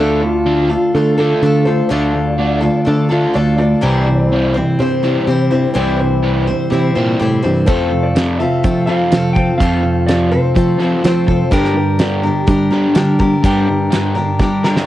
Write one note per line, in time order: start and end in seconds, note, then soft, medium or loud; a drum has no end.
0.00 0.75 D2 medium
0.00 0.20 D3 medium
0.00 0.70 D3 medium
0.00 0.21 A3 medium
0.00 0.70 A3 medium
0.00 0.21 D4 medium
0.00 0.70 D4 medium
0.00 0.70 F4 medium
0.00 0.23 A4 medium
0.00 0.68 A4 medium
0.22 0.43 D3 medium
0.22 0.44 A3 medium
0.22 0.90 F4 medium
0.46 0.69 D3 medium
0.46 0.69 A3 medium
0.46 0.69 D4 loud
0.69 0.92 D3 medium
0.69 0.92 A3 medium
0.69 0.94 D4 soft
0.69 0.95 F4 soft
0.69 0.94 A4 soft
0.95 1.33 D3 medium
0.95 1.16 D3 medium
0.95 1.18 A3 soft
0.95 1.17 A3 medium
0.95 1.19 D4 medium
0.95 1.18 F4 medium
0.95 1.17 A4 medium
1.18 1.41 D3 medium
1.18 1.42 A3 medium
1.18 1.42 D4 medium
1.18 1.42 D4 soft
1.18 1.43 F4 soft
1.18 1.42 A4 medium
1.18 1.68 A4 medium
1.42 1.81 D3 medium
1.42 1.64 D3 medium
1.42 1.67 A3 medium
1.42 1.64 A3 medium
1.42 1.67 D4 medium
1.42 1.66 F4 medium
1.42 1.64 A4 medium
1.65 1.89 D3 medium
1.65 1.89 A3 medium
1.65 1.90 D4 soft
1.65 1.90 F4 soft
1.65 1.90 A4 soft
1.65 1.91 C5 medium
1.89 2.68 D2 medium
1.89 2.62 D3 medium
1.89 2.14 D3 medium
1.89 2.63 A3 medium
1.89 2.14 A3 medium
1.89 2.62 D4 medium
1.89 2.14 D4 medium
1.89 2.60 F4 medium
1.89 2.59 A4 medium
1.89 3.31 D5 medium
2.15 2.36 D3 medium
2.15 2.37 A3 medium
2.39 2.61 D3 medium
2.39 2.62 A3 medium
2.39 2.62 D4 loud
2.61 2.84 D3 medium
2.61 2.85 A3 medium
2.61 2.85 D4 soft
2.61 2.86 F4 medium
2.61 2.86 A4 soft
2.85 3.25 D3 medium
2.85 3.09 D3 medium
2.85 3.10 A3 medium
2.85 3.09 A3 medium
2.85 3.11 D4 medium
2.85 3.10 F4 medium
2.85 3.08 A4 medium
3.09 3.34 D3 medium
3.09 3.34 A3 medium
3.09 3.33 D4 soft
3.09 3.34 D4 medium
3.09 3.34 F4 medium
3.09 3.34 A4 medium
3.33 3.74 D2 medium
3.33 3.57 D3 medium
3.33 3.58 A3 medium
3.33 3.57 A3 medium
3.33 3.59 D4 medium
3.33 3.58 F4 medium
3.33 3.57 A4 medium
3.33 3.58 D5 medium
3.58 3.80 D3 medium
3.58 3.81 A3 medium
3.58 3.82 D4 soft
3.58 3.82 F4 soft
3.58 3.83 A4 soft
3.58 4.83 D5 medium
3.81 4.60 C2 medium
3.81 4.54 C3 medium
3.81 4.05 C3 medium
3.81 4.55 E3 medium
3.81 4.06 E3 medium
3.81 4.55 G3 medium
3.81 4.06 G3 medium
3.81 4.56 C4 medium
3.81 4.54 E4 medium
3.81 4.54 C5 medium
4.07 4.29 C3 medium
4.07 4.29 E3 medium
4.32 4.54 C3 medium
4.32 4.55 E3 medium
4.32 4.55 G3 loud
4.54 4.77 C3 medium
4.54 4.77 E3 medium
4.54 4.78 G3 soft
4.54 4.79 C4 soft
4.54 4.80 E4 medium
4.54 4.79 C5 medium
4.79 5.18 C3 medium
4.79 5.01 C3 medium
4.79 5.02 E3 medium
4.79 5.03 G3 medium
4.79 5.04 C4 medium
4.79 5.03 E4 medium
4.79 5.75 C5 medium
4.79 5.02 C5 medium
5.03 5.26 C3 medium
5.03 5.26 E3 medium
5.03 5.27 G3 medium
5.03 5.26 G3 soft
5.03 5.27 C4 soft
5.03 5.28 E4 soft
5.03 5.27 C5 soft
5.27 5.66 C3 medium
5.27 5.49 C3 medium
5.27 5.50 E3 medium
5.27 5.51 G3 medium
5.27 5.51 C4 medium
5.27 5.50 E4 medium
5.27 5.49 C5 medium
5.51 5.73 C3 medium
5.51 5.73 E3 medium
5.51 5.74 G3 soft
5.51 5.74 C4 medium
5.51 5.75 E4 soft
5.51 5.75 C5 medium
5.74 6.52 C2 medium
5.74 6.47 C3 medium
5.74 5.98 C3 medium
5.74 6.47 E3 medium
5.74 5.99 E3 medium
5.74 6.47 G3 medium
5.74 5.99 G3 medium
5.74 6.49 C4 medium
5.74 6.47 E4 medium
5.74 6.47 C5 medium
5.74 5.99 C5 medium
6.00 6.21 C3 medium
6.00 6.22 E3 medium
6.00 6.92 C5 medium
6.23 6.46 C3 medium
6.23 6.46 E3 medium
6.23 6.47 G3 medium
6.47 6.69 C3 medium
6.47 6.70 E3 medium
6.47 6.69 G3 soft
6.47 6.71 C4 soft
6.47 6.72 E4 soft
6.47 6.72 C5 medium
6.70 6.93 C3 medium
6.70 6.91 C3 medium
6.70 6.93 E3 medium
6.70 6.95 G3 medium
6.70 6.96 C4 medium
6.70 6.95 E4 medium
6.70 6.94 C5 medium
6.95 7.18 A#2 medium
6.95 7.18 C3 medium
6.95 7.19 E3 medium
6.95 7.19 G3 loud
6.95 7.19 G3 soft
6.95 7.20 C4 soft
6.95 7.20 E4 soft
6.95 7.20 C5 medium
7.20 7.42 A2 medium
7.20 7.42 C3 medium
7.20 7.42 E3 medium
7.20 7.44 G3 medium
7.20 7.44 C4 medium
7.20 7.43 E4 medium
7.20 7.41 C5 medium
7.43 7.66 G2 medium
7.43 7.66 C3 medium
7.43 7.66 E3 medium
7.43 7.67 G3 soft
7.43 7.66 C4 soft
7.43 7.68 E4 medium
7.43 7.67 C5 medium
7.66 8.45 F2 medium
7.66 7.91 F2 medium
7.66 7.91 C3 medium
7.66 8.39 F3 medium
7.66 7.91 F3 medium
7.66 8.40 A3 medium
7.66 8.40 C4 medium
7.66 8.40 F4 medium
7.66 8.39 A4 medium
7.66 8.05 C5 medium
7.66 kick loud
7.66 closed hi-hat medium
7.92 8.13 F2 medium
7.92 8.14 C3 medium
8.03 8.39 D5 medium
8.15 8.38 F2 medium
8.15 8.39 C3 medium
8.15 8.39 F3 medium
8.15 snare loud
8.15 closed hi-hat medium
8.39 8.62 F2 medium
8.39 8.62 C3 medium
8.39 8.64 C4 soft
8.39 8.64 F4 soft
8.39 8.64 A4 medium
8.39 8.84 E5 medium
8.63 8.85 F2 medium
8.63 8.86 C3 medium
8.63 9.02 F3 medium
8.63 8.88 A3 soft
8.63 8.88 C4 medium
8.63 8.87 F4 medium
8.63 8.86 A4 medium
8.63 kick loud
8.63 closed hi-hat medium
8.86 9.10 F2 medium
8.86 9.11 C3 medium
8.86 9.11 F3 loud
8.86 9.12 C4 soft
8.86 9.12 F4 soft
8.86 9.11 A4 soft
8.86 9.33 F5 medium
9.12 9.34 F2 medium
9.12 9.34 C3 medium
9.12 9.50 F3 medium
9.12 9.36 A3 medium
9.12 9.37 C4 medium
9.12 9.35 F4 medium
9.12 9.34 A4 medium
9.12 snare loud
9.12 closed hi-hat medium
9.33 9.57 F2 medium
9.33 9.58 C3 medium
9.33 9.60 F4 soft
9.33 9.60 A4 medium
9.33 9.57 G5 loud
9.33 kick medium
9.38 9.60 C4 soft
9.58 9.82 F2 medium
9.58 10.37 F2 medium
9.58 9.82 C3 medium
9.58 9.82 F3 medium
9.58 10.32 F3 medium
9.58 10.32 A3 medium
9.58 10.33 C4 medium
9.58 10.08 F5 medium
9.58 kick loud
9.58 closed hi-hat medium
9.62 10.32 F4 medium
9.62 10.30 A4 medium
9.83 10.05 F2 medium
9.83 10.05 C3 medium
10.06 10.30 F2 medium
10.06 10.31 C3 medium
10.06 10.31 F3 medium
10.06 10.31 D5 medium
10.06 snare medium
10.06 closed hi-hat medium
10.31 10.54 F2 medium
10.31 10.54 C3 medium
10.31 10.55 C4 soft
10.31 10.56 F4 soft
10.31 10.56 A4 medium
10.31 10.76 C5 medium
10.55 10.77 F2 medium
10.55 10.77 C3 medium
10.55 10.95 F3 medium
10.55 10.80 A3 medium
10.55 10.80 C4 soft
10.55 10.81 F4 medium
10.55 10.79 A4 medium
10.55 kick loud
10.55 closed hi-hat medium
10.79 11.02 F2 medium
10.79 11.02 C3 medium
10.79 11.03 F3 loud
10.79 11.05 F4 soft
10.79 11.04 A4 medium
10.83 11.04 C4 soft
11.03 11.25 F2 medium
11.03 11.25 C3 medium
11.03 11.42 F3 medium
11.03 11.28 A3 medium
11.03 11.29 C4 medium
11.03 11.28 F4 medium
11.03 11.26 A4 medium
11.03 11.53 C5 loud
11.03 snare loud
11.03 closed hi-hat medium
11.27 11.49 F2 medium
11.27 11.49 C3 medium
11.27 11.52 F4 soft
11.27 11.52 A4 soft
11.27 kick medium
11.31 11.52 C4 soft
11.51 11.74 G2 medium
11.51 12.28 G2 medium
11.51 11.74 D3 medium
11.51 12.46 G3 medium
11.51 11.74 G3 medium
11.51 12.24 D4 medium
11.51 12.24 G4 medium
11.51 11.75 A#4 loud
11.51 12.22 A#4 medium
11.51 kick loud
11.51 closed hi-hat medium
11.64 snare soft
11.75 11.97 G2 medium
11.75 11.97 D3 medium
11.75 11.99 G4 medium
11.99 12.22 G2 medium
11.99 12.22 D3 medium
11.99 12.23 G3 medium
11.99 12.49 G4 medium
11.99 snare loud
11.99 closed hi-hat medium
12.23 12.45 G2 medium
12.23 12.45 D3 medium
12.23 12.46 D4 soft
12.23 12.48 G4 soft
12.23 12.48 A#4 medium
12.47 12.70 G2 medium
12.47 12.70 D3 medium
12.47 12.71 G3 medium
12.47 12.86 G3 medium
12.47 12.72 D4 medium
12.47 14.84 D4 medium
12.47 12.71 G4 medium
12.47 12.69 A#4 medium
12.47 kick loud
12.47 closed hi-hat medium
12.70 12.94 G2 medium
12.70 12.95 D3 medium
12.70 12.95 G3 medium
12.70 12.95 D4 soft
12.70 12.96 G4 soft
12.70 12.95 A#4 medium
12.95 13.17 G2 medium
12.95 13.18 D3 medium
12.95 13.19 G3 medium
12.95 13.34 G3 medium
12.95 13.20 D4 medium
12.95 13.19 G4 medium
12.95 13.18 A#4 medium
12.95 snare loud
12.95 closed hi-hat medium
13.19 13.41 G2 medium
13.19 13.42 D3 medium
13.19 13.43 D4 soft
13.19 13.44 G4 soft
13.19 13.43 A#4 medium
13.19 kick medium
13.43 13.66 G2 medium
13.43 14.20 G2 medium
13.43 13.66 D3 medium
13.43 14.16 G3 medium
13.43 13.67 G3 medium
13.43 14.16 D4 medium
13.43 14.16 G4 medium
13.43 14.14 A#4 medium
13.43 kick loud
13.43 closed hi-hat medium
13.68 13.89 G2 medium
13.68 13.90 D3 medium
13.90 14.14 G2 medium
13.90 14.14 D3 medium
13.90 14.14 G3 medium
13.90 snare medium
13.90 closed hi-hat medium
14.15 14.37 G2 medium
14.15 14.38 D3 medium
14.15 14.39 D4 soft
14.15 14.40 G4 medium
14.15 14.39 A#4 medium
14.39 14.61 G2 medium
14.39 14.61 D3 medium
14.39 14.63 G3 medium
14.39 14.78 G3 medium
14.39 14.64 D4 medium
14.39 14.64 G4 medium
14.39 14.63 A#4 medium
14.39 kick loud
14.39 snare medium
14.63 14.86 G2 medium
14.63 14.86 D3 medium
14.63 14.86 G3 medium
14.63 14.86 G4 soft
14.63 14.86 A#4 medium
14.63 snare medium
14.67 14.86 D4 soft
14.76 snare medium